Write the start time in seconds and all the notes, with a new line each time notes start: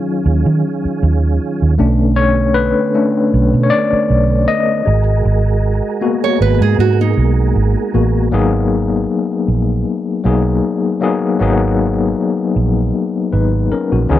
Already playing: D#3 F#3 C#4 F4 G#4
0.26 D#2
0.46 D#3
0.85 muted fingered electric bass stroke
1.03 D#2
1.62 D#2
1.78 B1 D3 A3 B3 C#4 D4
2.16 C#5
2.54 B4
2.94 A3 C#4 D4
3.34 B1
3.54 B2
3.63 C#5
3.70 D5
3.93 muted fingered electric bass stroke
4.10 B1
4.48 D#5
4.85 G#1 G#3 F#4 G#4 A#4
5.25 G#1
6.01 A#3 B3 F#4
6.24 C#5
6.41 G#1 B4
6.61 G#2 G#4
6.79 G#2 F#4
7.01 D#4
7.17 B1
7.56 G#1
7.94 A1 A#3 B3 F#4
8.32 G#1 F#3 A#3 B3 D#4 G#4
9.48 A#1
10.24 B1 F#3 A#3 B3 D#4 G#4
11.00 F#3 A#3 B3 D#4 G#4
11.39 G#1 F#3 A#3 B3 D#4 G#4
12.56 A#1
13.33 G#1 D#4 B4
13.72 C#4 A#4, muted fingered electric bass stroke
13.92 A#1 A#3 F#4
14.08 C#2 D#3 B3 C#4 D#4 G#4
14.15 E3